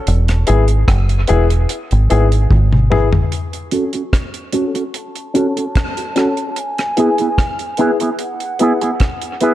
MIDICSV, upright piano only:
0, 0, Header, 1, 2, 480
1, 0, Start_track
1, 0, Key_signature, 3, "minor"
1, 0, Tempo, 813008
1, 37, Time_signature, 4, 2, 24, 8
1, 5632, End_track
2, 0, Start_track
2, 0, Title_t, "Upright piano"
2, 0, Program_c, 0, 0
2, 276, Note_on_c, 0, 59, 74
2, 279, Note_on_c, 0, 64, 71
2, 282, Note_on_c, 0, 68, 94
2, 367, Note_off_c, 0, 59, 0
2, 369, Note_off_c, 0, 64, 0
2, 370, Note_off_c, 0, 68, 0
2, 755, Note_on_c, 0, 59, 97
2, 759, Note_on_c, 0, 64, 88
2, 762, Note_on_c, 0, 68, 107
2, 847, Note_off_c, 0, 59, 0
2, 849, Note_off_c, 0, 64, 0
2, 850, Note_off_c, 0, 68, 0
2, 1238, Note_on_c, 0, 59, 76
2, 1241, Note_on_c, 0, 64, 76
2, 1244, Note_on_c, 0, 68, 97
2, 1328, Note_off_c, 0, 59, 0
2, 1330, Note_off_c, 0, 64, 0
2, 1331, Note_off_c, 0, 68, 0
2, 1714, Note_on_c, 0, 59, 76
2, 1719, Note_on_c, 0, 64, 71
2, 1722, Note_on_c, 0, 68, 91
2, 1806, Note_off_c, 0, 59, 0
2, 1809, Note_off_c, 0, 64, 0
2, 1810, Note_off_c, 0, 68, 0
2, 2197, Note_on_c, 0, 61, 79
2, 2200, Note_on_c, 0, 66, 76
2, 2203, Note_on_c, 0, 69, 85
2, 2288, Note_off_c, 0, 61, 0
2, 2289, Note_off_c, 0, 66, 0
2, 2291, Note_off_c, 0, 69, 0
2, 2673, Note_on_c, 0, 61, 91
2, 2676, Note_on_c, 0, 66, 84
2, 2679, Note_on_c, 0, 69, 91
2, 2766, Note_off_c, 0, 61, 0
2, 2767, Note_off_c, 0, 66, 0
2, 2769, Note_off_c, 0, 69, 0
2, 3153, Note_on_c, 0, 61, 81
2, 3157, Note_on_c, 0, 66, 74
2, 3160, Note_on_c, 0, 69, 79
2, 3245, Note_off_c, 0, 61, 0
2, 3248, Note_off_c, 0, 66, 0
2, 3249, Note_off_c, 0, 69, 0
2, 3522, Note_on_c, 0, 69, 21
2, 3523, Note_on_c, 0, 66, 20
2, 3567, Note_off_c, 0, 69, 0
2, 3568, Note_off_c, 0, 66, 0
2, 3634, Note_on_c, 0, 61, 84
2, 3637, Note_on_c, 0, 66, 70
2, 3640, Note_on_c, 0, 69, 90
2, 3726, Note_off_c, 0, 61, 0
2, 3727, Note_off_c, 0, 66, 0
2, 3729, Note_off_c, 0, 69, 0
2, 4112, Note_on_c, 0, 59, 76
2, 4114, Note_on_c, 0, 64, 68
2, 4118, Note_on_c, 0, 68, 86
2, 4205, Note_off_c, 0, 59, 0
2, 4206, Note_off_c, 0, 64, 0
2, 4208, Note_off_c, 0, 68, 0
2, 4594, Note_on_c, 0, 59, 90
2, 4598, Note_on_c, 0, 64, 81
2, 4603, Note_on_c, 0, 68, 101
2, 4686, Note_off_c, 0, 59, 0
2, 4688, Note_off_c, 0, 64, 0
2, 4691, Note_off_c, 0, 68, 0
2, 5072, Note_on_c, 0, 59, 78
2, 5077, Note_on_c, 0, 64, 63
2, 5080, Note_on_c, 0, 68, 80
2, 5166, Note_off_c, 0, 59, 0
2, 5168, Note_off_c, 0, 64, 0
2, 5169, Note_off_c, 0, 68, 0
2, 5555, Note_on_c, 0, 59, 73
2, 5558, Note_on_c, 0, 64, 80
2, 5562, Note_on_c, 0, 68, 75
2, 5632, Note_off_c, 0, 59, 0
2, 5632, Note_off_c, 0, 64, 0
2, 5632, Note_off_c, 0, 68, 0
2, 5632, End_track
0, 0, End_of_file